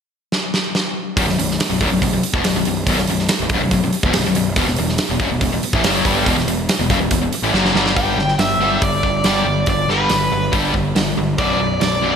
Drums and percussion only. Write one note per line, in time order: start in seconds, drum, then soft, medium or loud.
0.32 snare medium
0.54 snare medium
0.75 snare medium
1.17 kick loud
1.17 open hi-hat medium
1.29 snare soft
1.39 open hi-hat medium
1.51 snare soft
1.60 snare loud
1.60 open hi-hat medium
1.81 kick loud
1.81 open hi-hat medium
2.02 kick medium
2.02 open hi-hat medium
2.23 open hi-hat medium
2.34 kick loud
2.44 snare loud
2.44 open hi-hat medium
2.65 open hi-hat medium
2.87 kick loud
2.87 open hi-hat medium
2.98 snare soft
3.07 open hi-hat medium
3.19 snare soft
3.29 snare loud
3.29 open hi-hat medium
3.49 kick loud
3.49 open hi-hat medium
3.71 kick medium
3.71 open hi-hat medium
3.93 open hi-hat medium
4.03 kick loud
4.13 snare loud
4.13 open hi-hat medium
4.35 open hi-hat medium
4.56 kick loud
4.56 open hi-hat medium
4.67 snare soft
4.76 open hi-hat medium
4.89 snare soft
4.98 snare loud
4.98 open hi-hat medium
5.20 kick loud
5.20 open hi-hat medium
5.41 kick medium
5.41 open hi-hat medium
5.63 open hi-hat medium
5.73 kick loud
5.84 snare loud
5.84 open hi-hat medium
6.05 kick loud
6.05 open hi-hat medium
6.26 kick loud
6.26 open hi-hat medium
6.38 snare soft
6.48 open hi-hat medium
6.69 snare loud
6.69 open hi-hat medium
6.90 kick loud
6.90 open hi-hat medium
7.11 kick medium
7.11 open hi-hat medium
7.33 open hi-hat medium
7.54 snare medium
7.65 snare medium
7.75 snare medium
7.86 snare medium
7.96 kick loud
7.96 open hi-hat soft
8.19 snare soft
8.28 snare soft
8.39 snare loud
8.39 open hi-hat medium
8.82 kick loud
8.82 open hi-hat soft
9.03 kick medium
9.24 snare loud
9.24 open hi-hat soft
9.66 kick loud
9.66 open hi-hat soft
9.89 snare soft
10.10 snare loud
10.10 open hi-hat soft
10.53 kick loud
10.53 open hi-hat soft
10.74 kick medium
10.96 snare loud
10.96 open hi-hat soft
11.38 kick loud
11.38 open hi-hat soft
11.81 snare loud
11.81 open hi-hat soft